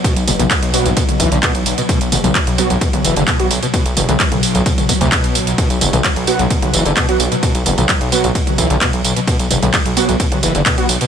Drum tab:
RD |x---x---x---x---|x---x---x---x---|x---x---x---x---|x---x---x---x---|
HH |xxoxxxoxxxoxxxox|xxoxxxoxxxoxxxox|xxoxxxoxxxoxxxox|xxoxxxoxxxoxxxox|
TB |xxxxx-xxx-xxx-xx|xxxxx-xxx-xxx-xx|xxxxx-xxxxxxx-xx|xxxxx-xxx-xxx-xx|
CP |----x-------x---|----x-------x---|----x-------x---|----x-------x---|
T2 |--oo-----o------|--oo-----o------|--oo-o---o------|--oo-----o------|
BD |o---o---o-o-o---|o---o---o---o---|o---o---o-o-o---|o---o---o---o---|

RD |x---x---x---x---|x---x---x---x---|
HH |xxoxxxoxxxoxxxox|xxoxxxoxxxoxxxox|
TB |xxxxx-xxx-xxx-xx|xxxxx-xxx-xxx-xx|
CP |----x-------x---|----x-------x---|
T2 |--oo-----o------|--oo-----o------|
BD |o---o---o-o-o---|o---o---o---o---|